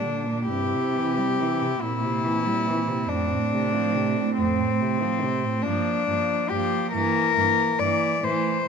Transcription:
Already playing: A#2 D4
0.01 D3
0.26 A#2
0.49 G2 C3 E4 G4
0.74 C3
0.95 E3
1.17 G3
1.39 E3
1.62 C3
1.81 A#2 C4 E4
2.04 C3
2.24 E3
2.46 G3
2.67 E3
2.87 C3
3.09 F2 A2 D4
3.31 A2
3.53 C3
3.74 F3
3.95 C3
4.17 A2
4.38 F2 C4
4.59 A2
4.81 C3
5.02 F3
5.23 C3
5.45 A2
5.62 G2 F3 A#3 D4
6.08 G2 F3 A#3
6.49 G2 F3 A#3 G4
6.93 G2 E3 A#3 A#4
7.36 G2 E3 A#3
7.79 G2 E3 A#3 D5
8.21 A2 E3 A3 C5
8.64 A3

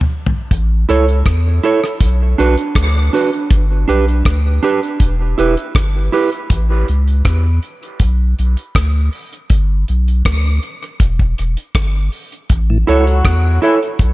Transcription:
0.01 mid tom
0.26 floor tom
0.51 A1, kick, closed hi-hat
0.89 C#2 E4 A4 C#5, closed hi-hat
1.08 closed hi-hat
1.26 E2, kick, cross-stick, closed hi-hat
1.63 E4 A4 C#5, closed hi-hat
1.84 cross-stick, closed hi-hat
2.00 B1, kick, closed hi-hat
2.38 B1 D4 F#4 B4, closed hi-hat
2.58 closed hi-hat
2.75 D2, kick, cross-stick, closed hi-hat
3.13 D4 F#4 B4, open hi-hat
3.33 closed hi-hat
3.51 G1, kick, closed hi-hat
3.88 B1 D4 G4 B4, closed hi-hat
4.08 closed hi-hat
4.25 D2, kick, cross-stick, closed hi-hat
4.63 D4 G4 B4, closed hi-hat
4.83 closed hi-hat
5.00 E1, kick, closed hi-hat
5.38 E1 E4 G4 B4, closed hi-hat
5.57 closed hi-hat
5.75 G1, kick, cross-stick, closed hi-hat
6.12 E4 G4 B4, open hi-hat
6.32 closed hi-hat
6.50 A1, kick, closed hi-hat
6.88 C#2, closed hi-hat
7.08 closed hi-hat
7.25 E2, kick, cross-stick, closed hi-hat
7.63 closed hi-hat
7.83 closed hi-hat
8.00 B1, kick, closed hi-hat
8.39 B1, closed hi-hat
8.57 closed hi-hat
8.75 D2, kick, cross-stick, closed hi-hat
9.13 open hi-hat
9.33 closed hi-hat
9.50 G1, kick, closed hi-hat
9.88 B1, closed hi-hat
10.08 closed hi-hat
10.25 D2, kick, cross-stick, closed hi-hat
10.63 closed hi-hat
10.83 closed hi-hat
11.00 E1, kick, closed hi-hat
11.19 kick
11.38 E1, closed hi-hat
11.57 closed hi-hat
11.75 G1, kick, cross-stick, closed hi-hat
12.12 open hi-hat
12.32 closed hi-hat
12.50 A1, kick, closed hi-hat
12.70 A2 E3
12.87 C#2 F#3 E4 F#4 A4 C#5, closed hi-hat
13.07 closed hi-hat
13.25 E2, kick, cross-stick, closed hi-hat
13.62 E3 E4 A4 C#5, closed hi-hat
13.83 closed hi-hat
13.99 B1, kick, closed hi-hat

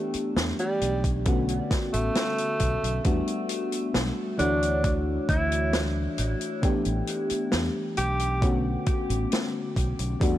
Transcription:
Already playing: E3 A3 B3 D4 G4
0.14 muted fretless electric bass stroke, closed hi-hat
0.36 E2, snare, closed hi-hat
0.59 G3, closed hi-hat
0.81 B1, closed hi-hat
1.04 kick, closed hi-hat
1.25 D3 A3 B3 C#4 F#4, kick, closed hi-hat
1.48 closed hi-hat
1.71 kick, snare, closed hi-hat
1.93 A1 A3, closed hi-hat
2.15 snare, closed hi-hat
2.38 closed hi-hat
2.60 B1, kick, closed hi-hat
2.83 B1, closed hi-hat
3.04 E2 G3 A3 B3 D4 F#4, kick, closed hi-hat
3.27 closed hi-hat
3.49 closed hi-hat
3.72 closed hi-hat
3.94 B1, snare, closed hi-hat
4.38 D2 E3 A3 D4 F#4 C#5, closed hi-hat
4.62 closed hi-hat
4.84 kick, closed hi-hat
5.29 D2 E4, kick, closed hi-hat
5.52 closed hi-hat
5.73 snare, closed hi-hat
6.18 A1, closed hi-hat
6.41 closed hi-hat
6.62 E3 A3 B3 D4 G4, muted fretless electric bass stroke, kick, closed hi-hat
6.85 A1, closed hi-hat
7.07 closed hi-hat
7.30 muted fretless electric bass stroke, closed hi-hat
7.52 E2, snare, closed hi-hat
7.97 B1 G4, closed hi-hat
8.19 closed hi-hat
8.40 D3 A3 B3 C#4 F#4, kick, closed hi-hat
8.86 kick, closed hi-hat
9.10 A1, closed hi-hat
9.32 snare, closed hi-hat
9.76 B1, kick, closed hi-hat
9.99 B1, closed hi-hat
10.20 E2 G3 A3 B3 D4 F#4, kick, closed hi-hat

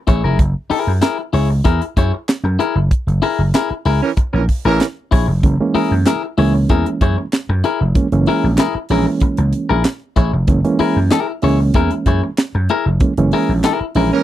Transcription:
0.07 A1 E4 G#4 C#5, kick, closed hi-hat
0.24 F1 E4 G#4 A#4
0.39 F#1, kick, closed hi-hat
0.70 E4 G#4 A#4, muted slap bass stroke, open hi-hat
0.87 F#2
1.01 E4 G#4 A#4, snare, clap, closed hi-hat
1.19 muted clean electric guitar stroke
1.33 C#2 E4 G#4 C#5, open hi-hat
1.50 muted clean electric guitar stroke
1.65 E2 E4 G#4 A#4, kick, closed hi-hat
1.82 muted clean electric guitar stroke, closed hi-hat
1.97 F#2 E4 G#4 C#5, kick, closed hi-hat
2.14 muted clean electric guitar stroke
2.28 snare, clap, closed hi-hat
2.44 F#2, muted clean electric guitar stroke
2.59 E4 G#4 A#4, closed hi-hat
2.75 F#1, muted clean electric guitar stroke
2.91 kick, closed hi-hat
3.07 F#1, closed hi-hat
3.22 E4 G#4 A#4, open hi-hat
3.39 F#1
3.54 E4 G#4 A#4, snare, clap, closed hi-hat
3.71 muted clean electric guitar stroke, muted slap bass stroke
3.85 C#2 E4 G#4 A#4, open hi-hat
4.02 E3 C#4 A#4
4.17 muted clean electric guitar stroke, muted slap bass stroke, kick, closed hi-hat
4.33 A#1 E3 C#4 A#4, muted clean electric guitar stroke
4.49 kick, open hi-hat
4.65 A1 E3 C#4 E4 G#4 A#4
4.80 muted clean electric guitar stroke, snare, clap, closed hi-hat
5.11 A#1 E4 G#4 C#5, kick, open hi-hat
5.28 F1, muted clean electric guitar stroke
5.43 F#1 E3 G#3 A#3 C#4, kick, closed hi-hat
5.61 E3 G#3 A#3 C#4
5.75 E4 G#4 A#4, muted slap bass stroke, open hi-hat
5.91 F#2
6.06 E4 G#4 A#4, snare, clap, closed hi-hat
6.23 muted clean electric guitar stroke
6.38 C#2 E3 G#3 A#3 C#4 E4 G#4 C#5, open hi-hat
6.55 muted clean electric guitar stroke
6.69 E2 E4 G#4 A#4, kick, closed hi-hat
6.86 muted clean electric guitar stroke, closed hi-hat
7.01 F#2 E4 G#4 C#5, kick, closed hi-hat
7.18 muted clean electric guitar stroke
7.32 snare, clap, closed hi-hat
7.49 F#2, muted clean electric guitar stroke
7.64 E4 G#4 A#4, closed hi-hat
7.81 F1, muted clean electric guitar stroke
7.95 E3 G#3 A#3 C#4, kick, closed hi-hat
8.12 F#1 E3 G#3 A#3 C#4, closed hi-hat
8.26 E4 G#4 A#4, open hi-hat
8.44 A#1
8.58 E4 G#4 A#4, snare, clap, closed hi-hat
8.75 muted slap bass stroke, muted clean electric guitar stroke
8.89 A#1 E3 G#3 A#3 C#4 E4 G#4 A#4, open hi-hat
9.07 muted clean electric guitar stroke
9.20 muted slap bass stroke, muted clean electric guitar stroke, kick, closed hi-hat
9.37 C#2, muted clean electric guitar stroke, closed hi-hat
9.53 closed hi-hat
9.69 A#1 E4 G#4 A#4
9.84 muted clean electric guitar stroke, snare, clap, closed hi-hat
10.16 A1 E4 G#4 C#5, kick, closed hi-hat
10.33 F1, muted clean electric guitar stroke
10.47 F#1 E3 G#3 A#3 C#4, kick, closed hi-hat
10.65 E3 G#3 A#3 C#4, closed hi-hat
10.79 E4 G#4 A#4, muted slap bass stroke, open hi-hat
10.96 F#2
11.11 E4 G#4 A#4, snare, clap, closed hi-hat
11.28 muted clean electric guitar stroke
11.42 C#2 E3 G#3 A#3 C#4 E4 G#4 C#5, open hi-hat
11.60 muted clean electric guitar stroke
11.74 E2 E4 G#4 A#4, kick, closed hi-hat
11.91 muted clean electric guitar stroke, closed hi-hat
12.06 F#2 E4 G#4 C#5, kick, closed hi-hat
12.24 muted clean electric guitar stroke
12.37 snare, clap, closed hi-hat
12.55 F#2, muted clean electric guitar stroke
12.69 E4 G#4 A#4, closed hi-hat
12.86 F1, muted clean electric guitar stroke
13.00 E3 G#3 A#3 C#4, kick, closed hi-hat
13.17 F#1 E3 G#3 A#3 C#4, closed hi-hat
13.32 E4 G#4 A#4, open hi-hat
13.49 A#1
13.64 E4 G#4 A#4, snare, clap, closed hi-hat
13.81 muted slap bass stroke, muted clean electric guitar stroke
13.95 A#1 E3 G#3 A#3 C#4 E4 G#4 A#4, open hi-hat
14.12 E3 C#4 A#4

